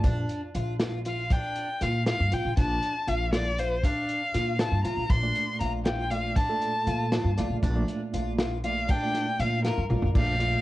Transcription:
0.04 upright bass A#1, twelve-string acoustic guitar D4, kick, closed hi-hat
0.29 closed hi-hat
0.55 upright bass A#1, twelve-string acoustic guitar F4, closed hi-hat
0.79 twelve-string acoustic guitar F4, snare, closed hi-hat
1.05 twelve-string acoustic guitar F4, violin F5, closed hi-hat
1.30 twelve-string acoustic guitar D4, violin G5, kick, closed hi-hat
1.55 closed hi-hat
1.81 upright bass A#2, twelve-string acoustic guitar F4, violin F5, snare, closed hi-hat
2.06 twelve-string acoustic guitar F4, violin F5, snare, closed hi-hat
2.20 upright bass G2
2.32 upright bass A#1, twelve-string acoustic guitar F4, violin G5, closed hi-hat
2.45 upright bass A#1
2.57 upright bass A#1, twelve-string acoustic guitar D4, violin A5, kick, closed hi-hat
2.82 closed hi-hat
3.07 upright bass A#1, twelve-string acoustic guitar F4, violin F5, closed hi-hat
3.33 twelve-string acoustic guitar F4, violin D5, snare, closed hi-hat
3.58 twelve-string acoustic guitar F4, violin C5, closed hi-hat
3.83 twelve-string acoustic guitar D4, violin F5, kick, closed hi-hat
4.09 closed hi-hat
4.34 upright bass A#2, twelve-string acoustic guitar F4, snare, closed hi-hat
4.59 twelve-string acoustic guitar F4, violin A5, snare, closed hi-hat
4.72 upright bass G2
4.85 upright bass A#1, twelve-string acoustic guitar F4, violin A#5, closed hi-hat
4.97 upright bass A#1
5.10 upright bass A#1, twelve-string acoustic guitar D4, violin C6, kick, closed hi-hat
5.23 tine electric piano A#2 A3 D5
5.35 closed hi-hat
5.60 upright bass A#1, twelve-string acoustic guitar F4, violin A#5, closed hi-hat
5.85 twelve-string acoustic guitar F4, violin G5, snare, closed hi-hat
6.11 tine electric piano A#2 A3 D5, twelve-string acoustic guitar F4, violin F5, closed hi-hat
6.36 twelve-string acoustic guitar D4, violin A5, kick, closed hi-hat
6.50 tine electric piano A#2 A3 A4
6.61 closed hi-hat
6.87 upright bass A#2, twelve-string acoustic guitar F4, closed hi-hat
7.12 twelve-string acoustic guitar F4, snare, closed hi-hat
7.24 upright bass G2
7.37 upright bass A#1, tine electric piano A#2 A3 D5, twelve-string acoustic guitar F4, snare, closed hi-hat
7.50 upright bass A#1
7.62 upright bass A#1, twelve-string acoustic guitar D4, kick, closed hi-hat
7.76 tine electric piano A#2 A3 D5
7.88 closed hi-hat
8.13 upright bass A#1, twelve-string acoustic guitar F4, closed hi-hat
8.38 twelve-string acoustic guitar F4, snare, closed hi-hat
8.64 tine electric piano A#2 A3 D5, twelve-string acoustic guitar F4, violin F5, closed hi-hat
8.89 twelve-string acoustic guitar D4, violin G5, kick, closed hi-hat
9.02 tine electric piano A#2 A3 D5
9.14 snare, closed hi-hat
9.39 upright bass A#2, twelve-string acoustic guitar F4, violin F5, closed hi-hat
9.64 twelve-string acoustic guitar F4, violin A#4, snare
9.78 upright bass G2
9.90 upright bass A#1, tine electric piano A#2 A3 D5, twelve-string acoustic guitar F4, mid tom
10.02 upright bass A#1, floor tom
10.15 upright bass A#1, tine electric piano A#2 A3 D5, twelve-string acoustic guitar D4, violin F5, kick, crash
10.39 tine electric piano A#2 A3 D5, twelve-string acoustic guitar F4, closed hi-hat

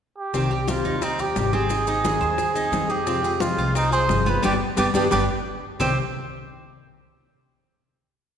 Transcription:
0.18 muted trumpet G4
0.34 upright bass C2, nylon-string guitar C3 D#3 G3 C4 G4, cuban tres C4, high bongo, high conga, maracas
0.50 nylon-string guitar G3 C4 G4, cuban tres G4, high bongo, high conga
0.68 nylon-string guitar C3 D#3 G3 C4 G4, muted trumpet F4, high bongo, high conga, maracas
0.85 upright bass D#2, cuban tres D#4, high bongo, maracas
1.01 cuban tres C4, muted trumpet D#4, muted nylon-string guitar stroke, high bongo, high conga, maracas
1.19 nylon-string guitar G3 C4 G4, cuban tres G4, muted trumpet G4, high bongo, high conga, maracas
1.36 upright bass G#1, nylon-string guitar C3 D#3 G3 C4 G4, high bongo, low bongo, high conga, maracas
1.53 nylon-string guitar G3 C4 G4, cuban tres C4, muted trumpet G#4, high conga, maracas
1.69 nylon-string guitar D#3 G#3 C4 D#4 G#4, high bongo, high conga, maracas
1.87 nylon-string guitar C4 D#4 G#4, cuban tres D#4, high bongo, high conga, maracas
2.04 nylon-string guitar D#3 G#3 C4 D#4 G#4, cuban tres G#4, high bongo, high conga, maracas
2.20 upright bass D#2, cuban tres C5, high bongo, high conga, maracas
2.38 muted nylon-string guitar stroke, high bongo, high conga, maracas
2.54 nylon-string guitar C4 D#4 G#4, cuban tres D#4, high conga, maracas
2.72 upright bass F2, nylon-string guitar D#3 G#3 C4 D#4 G#4, high bongo, low bongo, high conga, maracas
2.89 nylon-string guitar C4 D#4 G#4, muted trumpet G4, cuban tres G#4, high bongo, high conga, maracas
3.06 nylon-string guitar C3 F3 G#3 C4 F4, cuban tres C4, high bongo, high conga, maracas
3.23 nylon-string guitar G#3 C4 F4, cuban tres G#4, high bongo, high conga, maracas
3.39 nylon-string guitar C3 F3 G#3 C4 F4, muted trumpet F4, high bongo, high conga, maracas
3.58 upright bass C2, cuban tres F4, high bongo, maracas
3.74 cuban tres C4, muted trumpet D#4, muted nylon-string guitar stroke, high bongo, high conga, maracas
3.91 nylon-string guitar G#3 C4 F4, cuban tres G#4, muted trumpet C5, high bongo, high conga, maracas
4.07 upright bass G1, nylon-string guitar C3 F3 G#3 C4 F4, high bongo, low bongo, high conga, maracas
4.25 nylon-string guitar G#3 C4 F4, cuban tres B3, high conga, maracas
4.29 muted trumpet B4
4.42 upright bass G1, nylon-string guitar G3 B3 D4, cuban tres B3 D4 G4, muted trumpet G4, low bongo, high conga, maracas
4.76 upright bass G1, nylon-string guitar G3 B3 D4, cuban tres B3 D4 G4, muted trumpet G4, low bongo, high conga, maracas
4.94 upright bass G1, nylon-string guitar G3 B3 D4, cuban tres B3 D4 G4, muted trumpet G4, low bongo, high conga, maracas
5.10 upright bass G1, nylon-string guitar G3 B3 D4, cuban tres B3 D4 G4, muted trumpet G4, low bongo, high conga, maracas
5.79 upright bass C2, nylon-string guitar C3 D#3 G3 C4 G4, cuban tres C4 G4 C5, muted trumpet G4, low bongo, low conga, maracas

